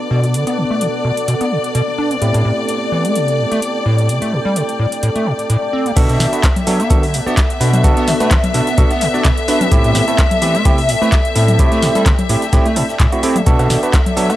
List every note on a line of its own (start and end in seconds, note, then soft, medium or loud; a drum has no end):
0.00 2.19 B3 medium
0.00 3.02 B3 medium
0.00 2.19 D4 medium
0.00 2.19 F#4 medium
0.00 2.19 A4 medium
0.00 5.97 A4 medium
0.00 5.97 D5 medium
0.00 5.98 D5 medium
0.00 2.22 F#5 medium
0.11 0.36 B2 loud
0.24 closed hi-hat soft
0.34 0.45 D3 medium
0.34 closed hi-hat medium
0.47 0.59 B3 medium
0.47 closed hi-hat soft
0.58 0.65 B2 medium
0.70 0.83 A3 medium
0.81 0.88 D3 medium
0.81 closed hi-hat medium
1.05 1.11 B2 medium
1.17 closed hi-hat soft
1.28 1.35 B2 medium
1.28 closed hi-hat medium
1.41 1.53 B3 medium
1.41 closed hi-hat soft
1.51 1.58 B2 medium
1.64 closed hi-hat soft
1.75 1.82 B2 loud
1.75 closed hi-hat medium
1.98 2.13 D4 medium
2.11 2.17 B3 medium
2.11 closed hi-hat soft
2.22 2.32 A2 medium
2.22 5.94 A3 medium
2.22 5.94 C4 medium
2.22 5.94 E4 medium
2.22 5.94 G4 medium
2.22 closed hi-hat medium
2.34 2.43 A2 loud
2.34 5.97 G5 medium
2.34 closed hi-hat soft
2.45 2.52 A2 medium
2.69 closed hi-hat medium
2.92 3.06 E3 medium
3.05 3.17 A3 medium
3.05 closed hi-hat soft
3.15 3.40 C3 medium
3.15 closed hi-hat medium
3.28 closed hi-hat soft
3.39 3.46 A2 medium
3.52 3.60 A3 loud
3.52 closed hi-hat soft
3.62 closed hi-hat medium
3.86 4.11 A2 medium
3.98 closed hi-hat soft
4.09 4.20 C3 medium
4.09 closed hi-hat medium
4.22 4.34 A3 medium
4.22 closed hi-hat soft
4.33 4.40 A2 medium
4.45 4.57 G3 medium
4.56 4.63 C3 medium
4.56 closed hi-hat medium
4.69 closed hi-hat soft
4.79 4.86 A2 medium
4.92 closed hi-hat soft
5.03 5.10 A2 medium
5.03 closed hi-hat medium
5.16 5.28 A3 medium
5.16 closed hi-hat soft
5.26 5.33 A2 medium
5.39 closed hi-hat soft
5.50 5.57 A2 medium
5.50 closed hi-hat medium
5.73 5.87 C4 medium
5.86 5.92 A3 medium
5.86 closed hi-hat soft
5.96 6.07 B2 medium
5.96 11.08 B3 medium
5.96 6.30 B3 loud
5.96 6.30 D4 medium
5.96 6.30 F#4 medium
5.96 6.30 A4 loud
5.96 13.45 E5 medium
5.96 kick loud
5.96 closed hi-hat medium
5.96 crash loud
5.96 shaker medium
6.08 6.18 B2 loud
6.08 14.36 A4 medium
6.08 closed hi-hat soft
6.08 shaker soft
6.20 6.27 B2 medium
6.20 snare medium
6.20 open hi-hat loud
6.20 shaker medium
6.33 6.44 B3 medium
6.33 6.44 D4 medium
6.33 6.44 F#4 medium
6.33 6.44 B4 medium
6.33 9.72 F#5 medium
6.33 closed hi-hat soft
6.33 shaker medium
6.43 14.36 D5 medium
6.43 kick loud
6.43 snare loud
6.43 clap loud
6.43 closed hi-hat medium
6.43 shaker medium
6.56 closed hi-hat medium
6.56 low conga medium
6.56 shaker soft
6.67 6.81 F#3 medium
6.67 6.80 B3 medium
6.67 6.80 D4 medium
6.67 6.80 F#4 medium
6.67 6.80 A4 medium
6.67 open hi-hat loud
6.67 shaker medium
6.80 6.92 B3 medium
6.80 snare soft
6.80 closed hi-hat soft
6.80 shaker medium
6.90 7.15 D3 medium
6.90 7.03 B3 loud
6.90 7.03 D4 medium
6.90 7.03 F#4 medium
6.90 7.03 A4 loud
6.90 kick loud
6.90 closed hi-hat medium
6.90 shaker medium
7.03 open hi-hat medium
7.03 shaker soft
7.14 7.21 B2 medium
7.14 open hi-hat loud
7.14 shaker medium
7.26 7.37 B3 medium
7.26 7.35 B3 loud
7.26 7.37 D4 medium
7.26 7.37 F#4 medium
7.26 7.37 D5 medium
7.26 shaker medium
7.37 kick loud
7.37 snare loud
7.37 clap loud
7.37 closed hi-hat medium
7.37 shaker medium
7.50 closed hi-hat soft
7.50 shaker soft
7.61 7.86 B2 loud
7.61 7.82 B3 medium
7.61 7.82 D4 medium
7.61 7.82 F#4 medium
7.61 7.82 B4 medium
7.61 open hi-hat loud
7.61 shaker medium
7.73 closed hi-hat medium
7.73 low conga loud
7.73 shaker medium
7.84 7.95 D3 medium
7.84 8.17 B3 loud
7.84 8.17 D4 medium
7.84 8.17 F#4 medium
7.84 8.17 A4 loud
7.84 kick loud
7.84 closed hi-hat medium
7.84 shaker medium
7.97 8.09 B3 medium
7.97 snare soft
7.97 closed hi-hat soft
7.97 shaker soft
8.08 8.15 B2 medium
8.08 snare medium
8.08 open hi-hat medium
8.08 open hi-hat loud
8.20 8.32 A3 medium
8.20 8.31 B3 medium
8.20 8.31 D4 medium
8.20 8.31 F#4 medium
8.20 8.31 B4 medium
8.20 closed hi-hat soft
8.20 shaker medium
8.31 8.38 D3 medium
8.31 kick loud
8.31 snare loud
8.31 clap loud
8.31 closed hi-hat medium
8.31 shaker medium
8.44 closed hi-hat medium
8.44 low conga loud
8.44 shaker soft
8.54 8.61 B2 medium
8.54 8.67 B3 medium
8.54 8.67 D4 medium
8.54 8.67 F#4 medium
8.54 8.67 A4 medium
8.54 open hi-hat loud
8.54 shaker medium
8.67 snare soft
8.67 closed hi-hat soft
8.67 shaker medium
8.78 8.85 B2 medium
8.78 8.91 B3 loud
8.78 8.91 D4 medium
8.78 8.91 F#4 medium
8.78 8.91 A4 loud
8.78 kick loud
8.78 closed hi-hat medium
8.78 shaker medium
8.91 9.03 B3 medium
8.91 snare medium
8.91 closed hi-hat soft
8.91 shaker soft
9.01 9.08 B2 medium
9.01 open hi-hat loud
9.01 shaker medium
9.14 9.25 B3 medium
9.14 9.25 D4 medium
9.14 9.25 F#4 medium
9.14 9.25 D5 loud
9.14 snare medium
9.14 shaker medium
9.25 9.32 B2 loud
9.25 kick loud
9.25 snare loud
9.25 clap loud
9.25 closed hi-hat medium
9.25 shaker medium
9.38 closed hi-hat soft
9.38 shaker soft
9.48 9.69 B3 medium
9.48 9.69 D4 medium
9.48 9.62 D4 medium
9.48 9.69 F#4 medium
9.48 9.69 B4 medium
9.48 snare loud
9.48 open hi-hat loud
9.48 shaker medium
9.61 9.67 B3 medium
9.61 closed hi-hat medium
9.61 low conga loud
9.61 shaker medium
9.72 9.82 A2 medium
9.72 10.05 A3 loud
9.72 10.05 C4 medium
9.72 10.05 E4 medium
9.72 10.05 G4 loud
9.72 kick loud
9.72 closed hi-hat medium
9.72 shaker medium
9.84 9.93 A2 loud
9.84 closed hi-hat soft
9.84 shaker soft
9.90 13.47 G5 medium
9.95 10.02 A2 medium
9.95 snare medium
9.95 open hi-hat loud
9.95 shaker medium
10.08 10.19 A3 medium
10.08 10.19 C4 medium
10.08 10.19 E4 medium
10.08 10.19 A4 medium
10.08 closed hi-hat soft
10.08 shaker medium
10.18 kick loud
10.18 snare loud
10.18 clap loud
10.18 closed hi-hat medium
10.18 shaker medium
10.31 closed hi-hat medium
10.31 low conga medium
10.31 shaker soft
10.42 10.56 E3 medium
10.42 10.55 A3 medium
10.42 10.55 C4 medium
10.42 10.55 E4 medium
10.42 10.55 G4 medium
10.42 open hi-hat loud
10.42 shaker medium
10.55 10.67 A3 medium
10.55 snare soft
10.55 closed hi-hat soft
10.55 shaker medium
10.65 10.90 C3 medium
10.65 10.78 A3 loud
10.65 10.78 C4 medium
10.65 10.78 E4 medium
10.65 10.78 G4 loud
10.65 kick loud
10.65 closed hi-hat medium
10.65 shaker medium
10.78 open hi-hat medium
10.78 shaker soft
10.89 10.96 A2 medium
10.89 open hi-hat loud
10.89 shaker medium
11.02 11.12 A3 medium
11.02 11.10 A3 loud
11.02 11.12 C4 medium
11.02 11.12 E4 medium
11.02 11.12 B4 medium
11.02 shaker medium
11.12 kick loud
11.12 snare loud
11.12 clap loud
11.12 closed hi-hat medium
11.12 shaker medium
11.25 closed hi-hat soft
11.25 shaker soft
11.36 11.61 A2 loud
11.36 11.57 A3 medium
11.36 11.57 C4 medium
11.36 11.57 E4 medium
11.36 11.57 A4 medium
11.36 open hi-hat loud
11.36 shaker medium
11.48 closed hi-hat medium
11.48 low conga loud
11.48 shaker medium
11.59 11.70 C3 medium
11.59 11.92 A3 loud
11.59 11.92 C4 medium
11.59 11.92 E4 medium
11.59 11.92 G4 loud
11.59 kick loud
11.59 closed hi-hat medium
11.59 shaker medium
11.72 11.84 A3 medium
11.72 snare soft
11.72 closed hi-hat soft
11.72 shaker soft
11.82 11.89 A2 medium
11.82 snare medium
11.82 open hi-hat loud
11.82 open hi-hat medium
11.95 12.07 G3 medium
11.95 12.06 A3 medium
11.95 12.06 C4 medium
11.95 12.06 E4 medium
11.95 12.06 A4 medium
11.95 closed hi-hat soft
11.95 shaker medium
12.06 12.13 C3 medium
12.06 kick loud
12.06 snare loud
12.06 clap loud
12.06 closed hi-hat medium
12.06 shaker medium
12.19 closed hi-hat soft
12.19 low conga medium
12.19 shaker soft
12.29 12.36 A2 medium
12.29 12.42 A3 medium
12.29 12.42 C4 medium
12.29 12.42 E4 medium
12.29 12.42 G4 medium
12.29 open hi-hat loud
12.29 shaker medium
12.42 snare soft
12.42 closed hi-hat soft
12.42 shaker medium
12.53 12.60 A2 medium
12.53 12.66 A3 loud
12.53 12.66 C4 medium
12.53 12.66 E4 medium
12.53 12.66 G4 loud
12.53 kick loud
12.53 snare loud
12.53 closed hi-hat medium
12.53 shaker medium
12.65 12.78 A3 medium
12.65 closed hi-hat soft
12.65 shaker soft
12.76 12.83 A2 medium
12.76 12.84 A3 medium
12.76 12.84 C4 medium
12.76 12.84 E4 medium
12.76 12.84 A4 medium
12.76 open hi-hat loud
12.76 shaker medium
12.89 snare soft
12.89 shaker medium
13.00 13.07 A2 loud
13.00 kick loud
13.00 snare loud
13.00 clap loud
13.00 closed hi-hat medium
13.00 shaker medium
13.12 13.22 A3 medium
13.12 13.22 C4 medium
13.12 13.22 E4 medium
13.12 13.22 F#4 medium
13.12 closed hi-hat soft
13.12 shaker soft
13.23 13.36 A3 medium
13.23 13.36 C4 medium
13.23 13.37 C4 medium
13.23 13.36 E4 medium
13.23 13.36 G4 loud
13.23 snare medium
13.23 open hi-hat loud
13.23 shaker medium
13.36 13.42 A3 medium
13.36 closed hi-hat medium
13.36 low conga medium
13.36 shaker medium
13.46 13.57 B2 medium
13.46 13.80 B3 loud
13.46 14.36 B3 medium
13.46 13.80 D4 medium
13.46 13.80 F#4 medium
13.46 13.80 A4 loud
13.46 14.36 E5 medium
13.46 kick loud
13.46 closed hi-hat medium
13.46 shaker medium
13.59 13.68 B2 loud
13.59 closed hi-hat soft
13.59 cowbell medium
13.59 shaker soft
13.67 13.77 B2 medium
13.67 14.36 F#5 medium
13.67 snare medium
13.67 open hi-hat loud
13.67 shaker medium
13.83 13.94 B3 medium
13.83 13.94 D4 medium
13.83 13.94 F#4 medium
13.83 13.94 B4 medium
13.83 closed hi-hat soft
13.83 shaker medium
13.93 kick loud
13.93 snare loud
13.93 clap loud
13.93 closed hi-hat medium
13.93 cowbell medium
13.93 shaker medium
14.06 closed hi-hat soft
14.06 low conga medium
14.06 shaker soft
14.17 14.31 F#3 medium
14.17 14.30 B3 medium
14.17 14.30 D4 medium
14.17 14.30 F#4 medium
14.17 14.30 A4 medium
14.17 open hi-hat loud
14.17 shaker medium
14.30 14.36 B3 medium
14.30 snare soft
14.30 closed hi-hat soft
14.30 cowbell medium
14.30 shaker medium